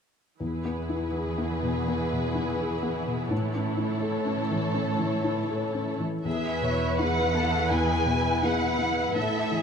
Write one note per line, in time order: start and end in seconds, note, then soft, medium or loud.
0.40 1.84 E2 soft
0.40 3.28 E2 soft
0.40 6.01 E3 soft
0.40 6.01 E4 soft
0.40 3.28 G#4 soft
0.40 3.28 B4 soft
0.65 1.05 B3 soft
0.89 1.29 E4 soft
1.14 1.54 G#4 soft
1.38 1.78 B3 soft
1.62 2.02 B2 soft
1.88 2.26 B3 soft
2.12 2.50 B2 soft
2.35 2.74 E4 soft
2.58 2.97 G#4 soft
2.82 3.21 B3 soft
3.07 3.31 B2 soft
3.31 4.71 A2 soft
3.31 6.05 A2 soft
3.31 6.01 A4 soft
3.31 6.01 C#5 soft
3.55 3.93 C#4 soft
3.77 4.17 E4 soft
4.01 4.41 A4 soft
4.25 4.65 C#4 soft
4.51 4.90 E3 soft
4.74 5.14 C#4 soft
4.99 5.39 E3 soft
5.24 5.65 E4 soft
5.49 5.90 A4 soft
5.74 6.15 C#4 soft
6.00 6.25 E3 soft
6.25 7.67 E2 soft
6.25 9.12 E2 soft
6.25 9.62 E4 soft
6.25 6.60 G#4 soft
6.25 9.12 B4 soft
6.25 6.95 E5 soft
6.62 7.20 B2 soft
6.62 6.99 C#5 soft
6.98 7.31 B3 soft
6.98 7.32 E4 soft
6.98 7.32 G#4 soft
6.98 7.36 B4 soft
6.98 7.70 F#5 medium
7.34 7.93 B3 soft
7.34 7.72 A4 soft
7.70 9.12 E2 soft
7.70 8.09 G#4 soft
7.70 8.44 G#5 medium
8.05 8.65 B2 soft
8.09 9.17 B4 soft
8.43 8.76 B3 soft
8.43 8.76 E4 soft
8.43 8.76 G#4 soft
8.43 9.16 F#5 medium
8.78 9.15 B3 soft
9.16 9.62 A2 soft
9.16 9.62 A3 soft
9.16 9.52 A4 soft
9.16 9.62 E5 medium
9.52 9.62 E3 soft
9.52 9.62 G#4 soft